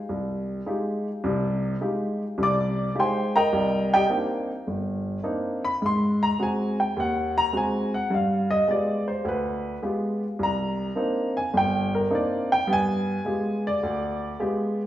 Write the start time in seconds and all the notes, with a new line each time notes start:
0.09 C2
0.66 G#3 D#4 F4 G4
1.24 C2 C3
1.81 G#3 D#4 F4 G4
2.38 C2 C3
2.43 D5 D6
2.95 G#3 D#4 F4 G4
3.00 C5 G5 G#5 C6
3.36 A#4 D#5 G5 A#5
3.53 C2
3.94 G4 D5 D#5 G5
4.09 A#3 C4 D4 D#4
4.67 G1
5.23 A#3 C4 D4 D#4
5.65 B5
5.82 G#2 C6
6.23 A#5
6.39 G#3 C4 F#4 G#5
6.80 G5
6.96 D#2 F#5
7.38 A#5
7.53 G#3 C4 F#4
7.57 G#5
7.94 F#5
8.11 G2 F5
8.51 D#5
8.68 G#3 B3 F4 G4 D5
9.08 C5
9.24 D2 B4
9.82 G#3 B3 F4 G4
10.39 C2 A#5
10.96 A#3 C4 D4 D#4
11.37 G#5
11.54 G1 G5
11.95 A#4
12.10 A#3 C4 D4 D#4
12.15 D5
12.52 G5
12.67 G2 B3
12.73 G#5
13.25 G#3 B3 F4 G4
13.67 D5
13.83 D2
14.39 G#3 B3 F4 G4